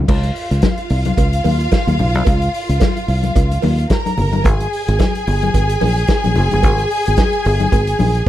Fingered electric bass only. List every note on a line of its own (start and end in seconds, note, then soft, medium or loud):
0.09 0.30 C#2 loud
0.51 0.60 C#2 medium
0.90 1.11 C2 medium
1.18 1.39 C#2 medium
1.45 1.66 D#2 medium
1.87 1.97 D#2 medium
2.00 2.15 B1 medium
2.15 2.24 C2 medium
2.27 2.48 C#2 loud
2.69 2.79 C#2 medium
3.08 3.29 C2 medium
3.36 3.57 C#2 medium
3.63 3.84 D#2 medium
4.18 4.45 G1 medium
4.45 4.66 G#1 loud
4.88 4.97 G#1 loud
5.27 5.48 G1 medium
5.55 5.75 G#1 medium
5.83 6.03 A#1 medium
6.26 6.34 A#1 medium
6.38 6.49 F#1 loud
6.53 6.64 G1 loud
6.64 6.85 G#1 loud
7.08 7.16 G#1 medium
7.46 7.67 G1 loud
7.72 7.93 G#1 medium
8.00 8.21 A#1 medium